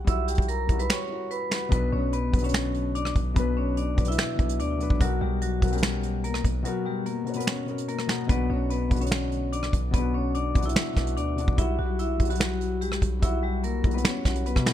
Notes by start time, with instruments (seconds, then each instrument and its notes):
Already playing: felt piano G3 E4 F#4
0.04 808-style bass B1, felt piano G3 E4, vibraphone E5 E6, kick, closed hi-hat
0.09 felt piano F#4
0.28 vibraphone G4 G5, closed hi-hat
0.35 808-style bass B1, kick, closed hi-hat
0.42 closed hi-hat
0.48 vibraphone A#4 A#5, closed hi-hat
0.67 808-style bass B1, felt piano G3 E4, kick, closed hi-hat
0.72 felt piano F#4
0.77 felt piano G3 E4, vibraphone B4 B5, closed hi-hat
0.82 felt piano F#4
0.90 vibraphone C#5 C#6, finger snap, snare, closed hi-hat
1.08 felt piano G3 E4
1.13 felt piano F#4
1.31 vibraphone B4 B5, closed hi-hat
1.50 felt piano G3 E4, finger snap, snare, closed hi-hat
1.55 felt piano F#4
1.69 808-style bass B1, felt piano B2 F#3 D4, vibraphone B3 B4, kick, closed hi-hat
1.74 felt piano B4
1.92 808-style bass B1, vibraphone C#4 C#5
2.13 vibraphone B3 B4, closed hi-hat
2.32 808-style bass B1, felt piano B2 F#3 D4, kick, closed hi-hat
2.37 felt piano B4, closed hi-hat
2.41 felt piano B2 D3 F#3, vibraphone C#4 C#5, closed hi-hat
2.46 felt piano B4, closed hi-hat
2.54 finger snap, snare
2.74 closed hi-hat
2.95 vibraphone D4 D5, closed hi-hat
3.05 cross-stick
3.16 808-style bass B1, kick, closed hi-hat
3.34 808-style bass B1, felt piano B2 F#3 D4, vibraphone B3 B4, kick, closed hi-hat
3.39 felt piano B4
3.57 vibraphone C#4 C#5
3.77 vibraphone D4 D5, closed hi-hat
3.95 808-style bass B1, felt piano B2 F#3 D4, kick, closed hi-hat
4.00 felt piano B4
4.05 felt piano B2 F#3, vibraphone E4, closed hi-hat
4.09 felt piano D4 B4, vibraphone E5, closed hi-hat
4.18 finger snap, snare
4.36 808-style bass B1, felt piano B2 F#3 D4, kick, closed hi-hat
4.41 felt piano B4
4.49 closed hi-hat
4.60 808-style bass D2, vibraphone D4 D5, closed hi-hat
4.78 felt piano B2 F#3 D4, closed hi-hat
4.82 felt piano B4
4.90 808-style bass B1, kick
4.99 808-style bass B1, felt piano B2 B3 F#4, vibraphone F#3 F#4, kick, closed hi-hat
5.04 felt piano A#4
5.21 808-style bass B1, vibraphone G3 G4
5.42 vibraphone F#3 F#4, closed hi-hat
5.60 808-style bass B1, felt piano B2 B3 F#4, kick, closed hi-hat
5.65 felt piano A#4, closed hi-hat
5.70 felt piano B2 B3 C#4, vibraphone G3 G4, closed hi-hat
5.75 felt piano A#4, closed hi-hat
5.83 finger snap, snare
6.03 closed hi-hat
6.24 vibraphone A#3 A#4, closed hi-hat
6.34 cross-stick
6.44 808-style bass B1, kick, closed hi-hat
6.63 felt piano B2 B3 F#4, vibraphone F#3 F#4, closed hi-hat
6.68 felt piano A#4
6.85 vibraphone G3 G4
7.06 vibraphone A#3 A#4, closed hi-hat
7.24 felt piano B2 B3 F#4, closed hi-hat
7.29 felt piano C#5, closed hi-hat
7.34 felt piano B2 B3 F#4, vibraphone B3 B4
7.39 felt piano A#4, closed hi-hat
7.47 vibraphone C#4 C#5, finger snap, snare
7.65 felt piano B2 B3 F#4, closed hi-hat
7.70 felt piano A#4
7.78 closed hi-hat
7.88 vibraphone A#3 A#4, closed hi-hat
7.99 cross-stick
8.07 felt piano B2 B3 F#4, finger snap, snare
8.12 felt piano A#4
8.27 808-style bass B1, felt piano B2 B3 D4, vibraphone B3 B4, kick, closed hi-hat
8.32 felt piano F#4
8.50 808-style bass B1, vibraphone C#4 C#5
8.70 vibraphone B3 B4, closed hi-hat
8.88 808-style bass B1, felt piano B2 B3 D4, kick, closed hi-hat
8.93 felt piano F#4, closed hi-hat
8.99 felt piano B2 D3 B3, vibraphone C#4 C#5, closed hi-hat
9.04 felt piano F#4, closed hi-hat
9.11 finger snap, snare
9.32 closed hi-hat
9.53 vibraphone D4 D5, closed hi-hat
9.63 cross-stick
9.73 808-style bass B1, kick, closed hi-hat
9.91 808-style bass B1, felt piano B2 B3 D4, vibraphone B3 B4, kick, closed hi-hat
9.96 felt piano F#4
10.14 vibraphone C#4 C#5
10.35 vibraphone D4 D5, closed hi-hat
10.54 808-style bass B1, felt piano B2 B3 D4, kick, closed hi-hat
10.59 felt piano F#4, closed hi-hat
10.63 felt piano B2 B3 D4, vibraphone E4 E5
10.68 felt piano F#4, closed hi-hat
10.76 finger snap, snare
10.93 808-style bass B1, felt piano B2 B3 D4, kick, snare, closed hi-hat
10.98 felt piano F#4
11.07 closed hi-hat
11.17 808-style bass D2, vibraphone D4 D5, closed hi-hat
11.36 felt piano B2 B3 D4, closed hi-hat
11.41 felt piano F#4
11.48 808-style bass B1, kick
11.56 808-style bass B1, felt piano G3 E4, vibraphone E4 E5, kick, closed hi-hat
11.61 felt piano F#4
11.79 808-style bass B1, vibraphone F#3 F#4
11.99 vibraphone E4 E5, closed hi-hat
12.18 808-style bass B1, felt piano G3 E4, kick, closed hi-hat
12.23 felt piano F#4, closed hi-hat
12.28 felt piano F#3 E4, vibraphone F#3 F#4, closed hi-hat
12.33 felt piano F#4, closed hi-hat
12.40 finger snap, snare
12.61 closed hi-hat
12.81 vibraphone G3 G4, closed hi-hat
12.92 cross-stick
13.02 808-style bass B1, kick, closed hi-hat
13.20 808-style bass B1, felt piano G3 E4, vibraphone E4 E5, kick, closed hi-hat
13.25 felt piano F#4
13.43 vibraphone G3 G4
13.64 vibraphone A#3 A#4, closed hi-hat
13.82 808-style bass B1, felt piano G3 E4, kick, closed hi-hat
13.87 felt piano F#4
13.91 felt piano G3 E4, vibraphone B3, closed hi-hat
13.95 felt piano F#4, vibraphone B4, closed hi-hat
14.05 vibraphone C#4 C#5, finger snap, snare
14.23 808-style bass B1, felt piano G3 E4, kick, snare, closed hi-hat
14.28 felt piano F#4
14.36 closed hi-hat
14.46 vibraphone B3 B4, closed hi-hat
14.56 808-style bass B2, kick, cross-stick
14.64 felt piano G3 E4, finger snap, snare, open hi-hat
14.69 felt piano F#4